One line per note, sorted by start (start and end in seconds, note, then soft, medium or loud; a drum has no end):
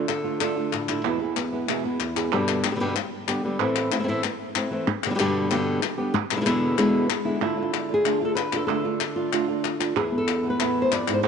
0.00 1.04 D3 medium
0.00 0.23 F4 soft
0.08 0.39 A4 medium
0.08 muted nylon-string guitar stroke soft
0.08 clap medium
0.24 0.40 A3 soft
0.24 0.40 D4 soft
0.24 0.40 F4 soft
0.24 1.02 F4 medium
0.41 0.56 D3 medium
0.41 0.56 A3 medium
0.41 0.56 D4 medium
0.41 0.55 F4 medium
0.41 1.05 A4 medium
0.41 clap medium
0.57 0.72 A3 soft
0.57 0.72 D4 soft
0.57 0.72 F4 soft
0.72 1.05 A2 medium
0.72 muted nylon-string guitar stroke medium
0.72 clap medium
0.89 1.05 A3 soft
0.89 1.04 D4 soft
0.89 2.32 E4 medium
0.89 1.04 F4 soft
0.89 clap medium
1.04 1.20 E2 medium
1.04 1.99 E2 medium
1.04 1.20 B2 medium
1.04 1.20 E3 medium
1.04 1.20 G#3 medium
1.04 1.20 B3 soft
1.04 1.19 B3 medium
1.04 1.19 E4 medium
1.04 clap soft
1.20 1.36 E3 soft
1.20 1.36 G#3 soft
1.20 1.36 B3 soft
1.20 1.36 E4 soft
1.36 1.51 B3 soft
1.36 muted nylon-string guitar stroke soft
1.36 clap medium
1.52 1.68 E3 soft
1.52 1.68 G#3 soft
1.52 1.68 B3 medium
1.52 1.68 B3 soft
1.52 1.68 E4 soft
1.68 1.84 E2 medium
1.68 1.84 B2 medium
1.68 1.84 E3 medium
1.68 1.84 G#3 medium
1.68 1.83 B3 medium
1.68 1.83 E4 medium
1.68 clap medium
1.84 1.99 E3 soft
1.84 2.00 G#3 soft
1.84 2.00 B3 soft
1.84 2.31 B3 soft
1.84 2.00 E4 soft
2.00 2.32 E2 medium
2.00 muted nylon-string guitar stroke soft
2.00 clap medium
2.16 2.32 E3 soft
2.16 2.32 G#3 soft
2.16 2.32 B3 soft
2.16 2.31 E4 soft
2.16 2.31 G#4 soft
2.16 clap medium
2.32 2.64 G2 medium
2.32 2.64 B2 medium
2.32 2.64 D3 medium
2.32 2.64 G3 medium
2.32 2.63 B3 medium
2.32 2.63 G4 medium
2.32 clap medium
2.48 clap medium
2.64 2.70 D3 medium
2.64 2.71 G3 medium
2.64 2.71 B3 medium
2.64 2.71 G4 medium
2.64 clap medium
2.71 2.74 B2 soft
2.71 2.75 D3 soft
2.71 2.75 G3 medium
2.71 2.75 B3 medium
2.71 2.76 G4 medium
2.76 2.79 B2 medium
2.76 2.79 D3 medium
2.76 2.80 G3 medium
2.76 2.80 B3 medium
2.76 2.80 G4 medium
2.80 2.95 G2 medium
2.80 2.95 B2 medium
2.80 2.96 D3 medium
2.80 2.96 G3 medium
2.80 2.96 B3 medium
2.80 2.96 G4 medium
2.96 muted nylon-string guitar stroke medium
2.96 clap medium
3.28 3.42 D3 soft
3.28 3.44 G3 soft
3.28 3.44 B3 medium
3.28 3.43 G4 medium
3.28 clap medium
3.44 3.59 D3 medium
3.44 3.60 G3 medium
3.44 3.60 B3 medium
3.44 3.60 G4 medium
3.59 3.91 A2 medium
3.59 3.91 E3 medium
3.59 3.91 A3 medium
3.59 3.91 C4 medium
3.59 3.91 E4 medium
3.59 clap medium
3.76 clap medium
3.92 3.98 A3 soft
3.92 3.99 C4 soft
3.92 3.99 E4 medium
3.92 clap medium
3.99 4.02 E3 soft
3.99 4.03 A3 soft
3.99 4.03 C4 medium
3.99 4.04 E4 medium
4.03 4.07 E3 medium
4.03 4.08 A3 medium
4.03 4.08 C4 medium
4.03 4.08 E4 medium
4.08 4.23 A2 medium
4.08 4.23 E3 medium
4.08 4.23 A3 medium
4.08 4.23 C4 medium
4.08 4.24 E4 medium
4.24 muted nylon-string guitar stroke medium
4.24 clap medium
4.55 4.70 A3 soft
4.55 4.71 C4 soft
4.55 4.71 E4 medium
4.55 clap medium
4.71 4.86 E3 medium
4.71 4.87 A3 medium
4.71 4.87 C4 medium
4.71 4.87 E4 medium
4.87 muted nylon-string guitar stroke medium
5.04 5.09 B2 medium
5.04 5.09 D3 medium
5.04 5.10 G3 medium
5.04 5.10 B3 medium
5.04 5.10 G4 medium
5.04 clap medium
5.10 5.13 B2 medium
5.10 5.14 D3 medium
5.10 5.14 G3 medium
5.10 5.14 B3 medium
5.10 5.15 G4 medium
5.15 5.18 B2 medium
5.15 5.19 D3 medium
5.15 5.19 G3 medium
5.15 5.19 B3 medium
5.15 5.19 G4 medium
5.19 5.49 G2 medium
5.19 5.49 B2 medium
5.19 5.50 D3 loud
5.19 5.50 G3 loud
5.19 5.50 B3 medium
5.19 5.51 G4 medium
5.19 clap medium
5.50 5.81 G2 medium
5.50 5.81 B2 medium
5.50 5.81 D3 medium
5.50 5.82 G3 medium
5.50 5.82 B3 medium
5.50 5.82 G4 loud
5.50 clap medium
5.82 muted nylon-string guitar stroke medium
5.82 clap medium
5.98 6.14 D3 soft
5.98 6.14 G3 soft
5.98 6.14 B3 medium
5.98 6.13 G4 medium
6.14 muted nylon-string guitar stroke medium
6.14 clap medium
6.31 6.35 B2 soft
6.31 6.35 D3 medium
6.31 6.36 G#3 medium
6.31 6.36 B3 medium
6.31 6.36 E4 medium
6.31 clap medium
6.36 6.40 B2 medium
6.36 6.40 D3 medium
6.36 6.40 G#3 medium
6.36 6.41 B3 medium
6.36 6.41 E4 medium
6.41 6.44 B2 medium
6.41 6.45 D3 medium
6.41 6.45 G#3 medium
6.41 6.45 B3 medium
6.41 6.45 E4 medium
6.45 6.76 E2 medium
6.45 6.76 B2 medium
6.45 6.77 D3 medium
6.45 6.77 G#3 medium
6.45 6.78 B3 medium
6.45 6.78 E4 medium
6.45 clap medium
6.77 7.08 E2 medium
6.77 7.08 B2 medium
6.77 7.08 D3 medium
6.77 7.09 G#3 medium
6.77 7.09 B3 medium
6.77 7.09 E4 medium
6.77 clap medium
7.09 muted nylon-string guitar stroke medium
7.09 clap medium
7.25 7.40 D3 soft
7.25 7.41 G#3 medium
7.25 7.41 B3 medium
7.25 7.40 E4 medium
7.40 7.56 D3 medium
7.40 8.68 D3 medium
7.40 7.57 A3 medium
7.40 7.57 D4 medium
7.40 7.95 E4 medium
7.40 7.56 F4 medium
7.40 clap soft
7.57 7.72 A3 soft
7.57 7.72 D4 soft
7.57 7.73 F4 soft
7.63 8.04 F4 medium
7.73 muted nylon-string guitar stroke medium
7.73 clap medium
7.89 8.04 A3 soft
7.89 8.05 D4 soft
7.89 8.04 F4 soft
7.94 8.25 G#4 medium
8.05 8.20 D3 medium
8.05 8.21 A3 medium
8.05 8.20 D4 medium
8.05 8.20 F4 medium
8.05 clap medium
8.21 8.36 A3 soft
8.21 8.36 D4 soft
8.21 8.36 F4 soft
8.21 8.52 F4 soft
8.25 8.35 A4 medium
8.35 8.56 B4 loud
8.35 muted nylon-string guitar stroke soft
8.35 clap medium
8.53 8.68 A3 soft
8.53 8.69 D4 soft
8.53 8.68 F4 soft
8.53 8.67 F4 medium
8.53 8.66 A4 medium
8.53 clap medium
8.67 8.84 D3 medium
8.67 9.96 D3 medium
8.67 8.84 A3 medium
8.67 8.84 D4 medium
8.67 8.83 F4 medium
8.67 9.47 A4 loud
8.67 clap soft
8.84 8.99 A3 soft
8.84 8.99 D4 soft
8.84 9.00 F4 soft
8.84 9.15 F4 medium
9.00 muted nylon-string guitar stroke medium
9.00 clap medium
9.16 9.32 A3 soft
9.16 9.32 D4 soft
9.16 9.79 F4 medium
9.16 9.32 F4 soft
9.32 9.48 D3 medium
9.32 9.48 A3 medium
9.32 9.48 D4 medium
9.32 9.47 F4 medium
9.32 clap medium
9.48 9.64 A3 soft
9.48 9.64 D4 soft
9.48 9.64 F4 soft
9.64 muted nylon-string guitar stroke medium
9.64 clap medium
9.80 9.96 A3 soft
9.80 9.96 D4 soft
9.80 9.95 F4 soft
9.80 9.94 F4 medium
9.80 clap medium
9.96 10.91 E2 medium
9.96 10.12 B3 soft
9.96 10.59 E4 soft
9.96 10.17 G#4 medium
9.96 muted nylon-string guitar stroke medium
9.96 clap soft
10.12 11.22 B3 medium
10.18 10.49 A4 medium
10.28 clap medium
10.43 10.59 E3 soft
10.43 10.59 A3 soft
10.43 10.59 B3 soft
10.43 10.59 E4 soft
10.50 10.81 B4 medium
10.59 10.90 E2 medium
10.59 10.90 A2 medium
10.59 10.90 E3 medium
10.59 10.91 A3 medium
10.59 10.91 B3 medium
10.59 11.22 E4 soft
10.59 10.91 E4 medium
10.59 clap medium
10.82 10.92 C5 medium
10.91 11.07 F2 medium
10.91 11.24 D5 loud
10.91 muted nylon-string guitar stroke medium
10.91 clap medium
11.07 11.24 G#2 medium
11.07 11.23 E3 soft
11.07 11.23 A3 soft
11.07 11.23 B3 soft
11.07 11.23 E4 soft
11.07 clap medium
11.14 11.23 C5 medium
11.23 11.28 A2 medium
11.23 11.28 C4 soft
11.23 11.28 C5 medium
11.23 muted nylon-string guitar stroke medium
11.23 clap soft